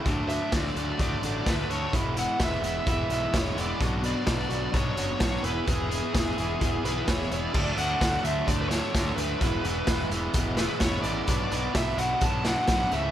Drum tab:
CC |--------|--------|--------|--------|
HH |xxxxxxxx|xxxxxxxx|xxxxxxxx|xxxxxxxx|
SD |--o---o-|--o---o-|--o---o-|--o---o-|
BD |o-o-o-o-|o-o-o-o-|o-o-o-o-|o-o-o-o-|

CC |x-------|--------|--------|
HH |-xxxxxxx|xxxxxxxx|xxxxxxxx|
SD |--o--oo-|--o--oo-|--o--oo-|
BD |o-o-o-o-|o-o-o-o-|o-o-o-o-|